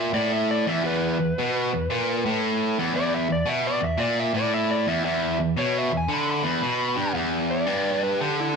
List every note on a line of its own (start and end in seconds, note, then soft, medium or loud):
0.00 0.12 A#2 loud
0.00 0.14 E5 medium
0.13 0.65 A2 loud
0.13 0.31 D5 medium
0.32 0.49 E5 medium
0.51 0.67 D5 medium
0.67 0.83 E2 loud
0.67 0.85 E5 medium
0.84 1.18 E2 loud
0.84 2.39 B4 medium
1.20 1.33 E2 medium
1.39 1.72 B2 loud
1.74 1.87 E2 medium
1.90 2.24 A#2 loud
2.25 2.76 A2 loud
2.78 2.93 E2 loud
2.94 3.28 E2 loud
2.94 3.13 D5 loud
3.14 3.30 E5 medium
3.29 3.44 E2 medium
3.29 3.48 D5 medium
3.46 3.81 B2 loud
3.46 3.65 E5 medium
3.67 3.83 D5 medium
3.81 3.96 E2 medium
3.81 4.00 E5 medium
3.98 4.33 A#2 loud
3.98 4.17 D5 loud
4.20 4.36 E5 medium
4.34 4.86 A2 loud
4.34 4.53 D5 medium
4.54 4.70 E5 medium
4.71 4.87 D5 medium
4.87 5.04 E2 medium
4.87 5.04 E5 medium
5.05 5.38 E2 loud
5.05 5.39 E5 medium
5.39 5.54 E2 medium
5.57 5.91 B2 loud
5.57 5.75 C#5 medium
5.79 5.94 E5 medium
5.91 6.06 E2 medium
5.97 6.12 G#5 medium
6.09 6.43 D3 loud
6.14 6.29 B5 medium
6.30 7.14 B5 medium
6.43 6.61 E2 loud
6.62 6.97 B2 medium
6.96 7.14 G2 medium
7.14 7.66 E2 loud
7.50 8.02 D5 medium
7.66 8.20 G2 medium
8.03 8.20 B4 medium
8.21 8.55 D3 loud
8.21 8.38 G4 medium
8.40 8.55 E4 medium